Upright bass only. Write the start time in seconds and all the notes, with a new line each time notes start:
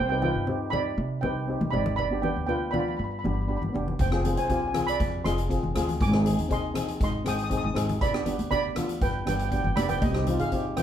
Already playing: C2
0.35 G2
0.98 C3
1.23 C2
1.61 C2
1.73 G#1
1.98 G1
2.36 D2
2.99 G2
3.24 G1
3.62 G1
3.74 F1
3.99 F1
4.37 C2
5.00 F2
5.25 F1
5.63 F1
5.76 D2
6.01 G#1
6.39 D#2
7.01 G#2
7.26 G#1
7.63 G#1
7.75 G#1
8.01 G1
8.39 D2
9.01 G2
9.27 G1
9.64 G1
9.76 F1
10.02 C2
10.39 G2